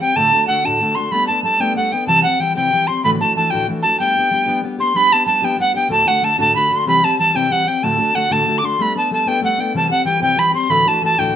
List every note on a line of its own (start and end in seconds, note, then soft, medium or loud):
0.00 0.17 G3 soft
0.00 0.16 C4 soft
0.00 0.15 G4 soft
0.00 0.17 G5 medium
0.15 0.31 D2 medium
0.15 0.32 A2 medium
0.15 0.32 D3 medium
0.15 0.32 A3 medium
0.15 0.32 D4 medium
0.15 0.31 F#4 medium
0.15 0.47 A5 medium
0.32 0.46 D3 soft
0.32 0.47 A3 soft
0.32 0.49 D4 soft
0.32 0.48 F#4 soft
0.47 0.63 D3 medium
0.47 0.64 A3 medium
0.47 0.64 D4 medium
0.47 0.63 F#4 medium
0.47 0.67 F#5 medium
0.65 0.81 D2 medium
0.65 0.81 A2 soft
0.65 0.80 D3 medium
0.65 0.81 A3 medium
0.65 0.80 D4 medium
0.65 0.80 F#4 medium
0.65 0.96 A5 medium
0.81 0.96 D3 soft
0.81 0.97 A3 medium
0.81 0.95 D4 medium
0.81 0.95 F#4 medium
0.95 1.11 D3 soft
0.95 1.11 A3 soft
0.95 1.12 D4 soft
0.95 1.12 F#4 soft
0.95 1.13 C6 medium
1.11 1.28 G3 medium
1.11 1.28 A3 medium
1.11 1.28 B3 medium
1.11 1.27 D4 medium
1.11 1.26 B5 medium
1.27 1.43 A3 soft
1.27 1.44 B3 soft
1.27 1.44 D4 soft
1.27 1.42 A5 medium
1.43 1.59 G3 soft
1.43 1.60 A3 soft
1.43 1.59 B3 soft
1.43 1.58 D4 soft
1.43 1.62 A5 medium
1.60 1.75 G3 soft
1.60 1.75 A3 medium
1.60 1.76 B3 medium
1.60 1.75 D4 medium
1.60 1.76 G5 medium
1.76 1.92 G3 soft
1.76 1.92 A3 medium
1.76 1.92 B3 medium
1.76 1.91 D4 medium
1.76 1.93 F#5 medium
1.92 2.08 A3 soft
1.92 2.08 B3 soft
1.92 2.08 D4 soft
1.92 2.07 G5 medium
2.07 2.23 C3 medium
2.07 2.24 E3 medium
2.07 2.24 G3 medium
2.07 2.24 C4 medium
2.07 2.23 G4 medium
2.07 2.22 A5 medium
2.23 2.40 C4 soft
2.23 2.40 G4 soft
2.23 2.42 F#5 medium
2.28 2.40 G3 soft
2.40 2.55 E3 medium
2.40 2.55 G3 medium
2.40 2.55 C4 medium
2.40 2.54 G4 medium
2.40 2.55 G5 medium
2.55 2.72 C3 medium
2.55 2.71 E3 medium
2.55 2.72 G3 medium
2.55 2.72 C4 medium
2.55 2.71 G4 medium
2.55 2.89 G5 medium
2.72 2.87 E3 medium
2.72 2.88 G3 soft
2.72 2.88 C4 medium
2.72 2.87 G4 medium
2.87 3.04 G3 soft
2.87 3.04 C4 soft
2.87 3.04 G4 medium
2.87 3.03 C6 medium
3.04 3.19 D2 medium
3.04 3.20 A2 medium
3.04 3.20 E3 medium
3.04 3.20 A3 medium
3.04 3.20 D4 medium
3.04 3.19 F#4 medium
3.04 3.10 B5 medium
3.20 3.35 E3 soft
3.20 3.36 A3 soft
3.20 3.36 D4 soft
3.20 3.35 F#4 medium
3.20 3.35 A5 medium
3.36 3.51 E3 medium
3.36 3.52 A3 medium
3.36 3.51 D4 medium
3.36 3.51 F#4 medium
3.36 3.52 A5 medium
3.50 3.68 A2 medium
3.50 3.66 E3 medium
3.50 3.67 A3 medium
3.50 3.68 D4 medium
3.50 3.68 F#4 medium
3.50 3.67 G5 medium
3.54 3.69 D2 medium
3.68 3.83 E3 soft
3.68 3.84 A3 medium
3.68 3.83 D4 medium
3.68 3.82 F#4 medium
3.82 4.00 A3 soft
3.82 4.00 D4 soft
3.82 3.99 F#4 soft
3.82 3.97 A5 medium
3.87 3.99 E3 soft
4.00 4.15 G3 medium
4.00 4.16 B3 medium
4.00 4.16 D4 medium
4.00 4.14 G4 medium
4.00 4.59 G5 medium
4.16 4.31 B3 soft
4.16 4.32 D4 soft
4.16 4.31 G4 soft
4.31 4.47 G3 soft
4.31 4.46 B3 soft
4.31 4.46 D4 medium
4.31 4.45 G4 medium
4.46 4.62 G3 medium
4.46 4.63 B3 medium
4.46 4.63 D4 medium
4.46 4.62 G4 medium
4.63 4.79 G3 medium
4.63 4.79 B3 medium
4.63 4.79 D4 medium
4.63 4.77 G4 medium
4.78 4.94 B3 soft
4.78 4.94 D4 soft
4.78 4.95 G4 medium
4.78 4.98 C6 medium
4.94 5.11 G3 medium
4.94 5.11 B3 medium
4.94 5.11 D4 medium
4.94 5.10 G4 medium
4.94 5.14 B5 loud
5.11 5.26 B3 soft
5.11 5.27 D4 soft
5.11 5.27 G4 medium
5.11 5.26 A5 medium
5.26 5.42 G3 medium
5.26 5.42 B3 medium
5.26 5.41 D4 medium
5.26 5.41 G4 medium
5.26 5.46 A5 medium
5.42 5.57 G3 medium
5.42 5.58 B3 medium
5.42 5.59 D4 medium
5.42 5.58 G4 medium
5.42 5.59 G5 medium
5.58 5.74 G3 medium
5.58 5.75 B3 medium
5.58 5.74 D4 soft
5.58 5.73 G4 medium
5.58 5.74 F#5 medium
5.74 5.90 B3 soft
5.74 5.90 D4 soft
5.74 5.90 G4 soft
5.74 5.90 G5 medium
5.89 6.06 D2 medium
5.89 6.06 A2 medium
5.89 6.06 D3 medium
5.89 6.06 A3 medium
5.89 6.06 D4 medium
5.89 6.04 F#4 medium
5.89 6.09 A5 loud
6.06 6.21 D3 soft
6.06 6.22 A3 soft
6.06 6.23 D4 soft
6.06 6.22 F#4 soft
6.06 6.26 F#5 medium
6.22 6.38 D3 medium
6.22 6.38 A3 medium
6.22 6.37 D4 medium
6.22 6.37 F#4 medium
6.22 6.39 A5 medium
6.38 6.55 D2 medium
6.38 6.55 A2 medium
6.38 6.53 D3 medium
6.38 6.54 A3 medium
6.38 6.54 D4 medium
6.38 6.54 F#4 medium
6.38 6.54 A5 medium
6.54 6.70 D3 medium
6.54 6.71 A3 medium
6.54 6.70 D4 medium
6.54 6.69 F#4 medium
6.54 6.74 B5 medium
6.70 6.87 D3 soft
6.70 6.87 A3 soft
6.70 6.86 D4 soft
6.70 6.86 F#4 soft
6.70 6.87 C6 medium
6.86 7.02 C3 medium
6.86 7.03 E3 medium
6.86 7.03 G3 medium
6.86 7.03 C4 medium
6.86 7.01 G4 medium
6.86 7.06 B5 loud
7.03 7.19 G3 soft
7.03 7.19 C4 soft
7.03 7.18 G4 medium
7.03 7.18 A5 medium
7.19 7.34 E3 medium
7.19 7.35 G3 medium
7.19 7.34 C4 medium
7.19 7.33 G4 medium
7.19 7.37 A5 medium
7.34 7.51 C3 medium
7.34 7.48 E3 medium
7.34 7.49 G3 medium
7.34 7.50 C4 medium
7.34 7.50 G4 medium
7.34 7.53 G5 medium
7.49 7.66 E3 medium
7.49 7.66 G3 medium
7.49 7.66 C4 medium
7.49 7.64 G4 medium
7.49 7.69 F#5 medium
7.68 7.83 G3 soft
7.68 7.83 C4 soft
7.68 7.85 G5 medium
7.83 7.98 D2 medium
7.83 7.99 A2 medium
7.83 7.99 D3 medium
7.83 7.98 A3 medium
7.83 7.98 D4 medium
7.83 7.97 F#4 medium
7.83 8.16 A5 medium
7.98 8.13 D3 soft
7.98 8.14 A3 soft
7.98 8.14 D4 soft
7.98 8.14 F#4 soft
8.14 8.30 D3 medium
8.14 8.30 A3 medium
8.14 8.29 D4 medium
8.14 8.29 F#4 medium
8.14 8.34 F#5 medium
8.30 8.47 D2 medium
8.30 8.47 A2 medium
8.30 8.45 D3 medium
8.30 8.46 A3 medium
8.30 8.46 D4 medium
8.30 8.46 F#4 medium
8.30 8.60 A5 medium
8.46 8.62 D3 medium
8.46 8.63 A3 medium
8.46 8.62 D4 medium
8.46 8.61 F#4 medium
8.58 8.66 D6 medium
8.62 8.79 D3 soft
8.62 8.78 A3 soft
8.62 8.78 D4 soft
8.62 8.78 F#4 soft
8.62 8.83 C6 medium
8.79 8.94 G3 medium
8.79 8.94 A3 medium
8.79 8.95 B3 medium
8.79 8.94 D4 medium
8.79 8.96 B5 medium
8.95 9.10 A3 soft
8.95 9.11 B3 soft
8.95 9.10 D4 medium
8.95 9.10 A5 medium
9.11 9.26 G3 medium
9.11 9.26 A3 soft
9.11 9.26 B3 medium
9.11 9.25 D4 medium
9.11 9.29 A5 medium
9.26 9.40 G3 medium
9.26 9.41 A3 medium
9.26 9.42 B3 medium
9.26 9.42 D4 medium
9.26 9.43 G5 medium
9.41 9.57 G3 medium
9.41 9.58 A3 medium
9.41 9.58 B3 medium
9.41 9.57 D4 medium
9.41 9.62 F#5 medium
9.58 9.75 A3 soft
9.58 9.74 B3 soft
9.58 9.74 D4 soft
9.58 9.75 G5 medium
9.74 9.90 C3 medium
9.74 9.90 E3 medium
9.74 9.90 G3 medium
9.74 9.90 C4 medium
9.74 9.88 G4 medium
9.74 9.90 A5 medium
9.89 10.05 G3 soft
9.89 10.06 C4 soft
9.89 10.05 G4 soft
9.89 10.05 F#5 medium
10.05 10.21 E3 medium
10.05 10.20 G3 medium
10.05 10.20 C4 medium
10.05 10.19 G4 medium
10.05 10.20 G5 medium
10.20 10.38 C3 medium
10.20 10.35 E3 medium
10.20 10.36 G3 medium
10.20 10.37 C4 medium
10.20 10.37 G4 medium
10.20 10.40 G5 medium
10.37 10.53 E3 medium
10.37 10.53 G3 medium
10.37 10.53 C4 medium
10.37 10.52 G4 medium
10.37 10.54 B5 medium
10.53 10.70 G3 soft
10.53 10.70 C4 soft
10.53 10.69 G4 soft
10.53 10.71 C6 medium
10.69 10.85 D2 medium
10.69 10.85 A2 medium
10.69 10.86 E3 medium
10.69 10.86 A3 medium
10.69 10.86 D4 medium
10.69 10.84 F#4 medium
10.69 10.89 B5 loud
10.85 11.00 E3 soft
10.85 11.01 A3 soft
10.85 11.02 D4 medium
10.85 11.01 F#4 medium
10.85 11.02 A5 medium
11.02 11.17 E3 medium
11.02 11.18 A3 medium
11.02 11.17 D4 medium
11.02 11.17 F#4 medium
11.02 11.20 A5 medium
11.18 11.34 D2 medium
11.18 11.34 A2 medium
11.18 11.33 E3 medium
11.18 11.34 A3 medium
11.18 11.34 D4 medium
11.18 11.34 F#4 medium
11.18 11.34 G5 medium